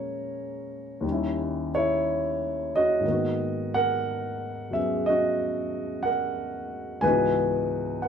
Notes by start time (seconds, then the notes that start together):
Already playing: A#2 F3 G#3 A#3 C#4 C#5 A#5
1.01 D#2 D#3
1.05 G3 C#4
1.12 E4
1.75 E4 C#5
2.76 F#4 D#5
3.01 G#2 D#3
3.06 A#3 B3
3.11 F#4
3.74 A#4 F#5
4.71 F#3 B3 C#4 G#4 E5
5.06 F#4 D#5
6.03 A#4 F#5
7.01 C#2 G#2 E3 B3 B4 G#5
7.06 D#4 F#4
8.02 B4 F#5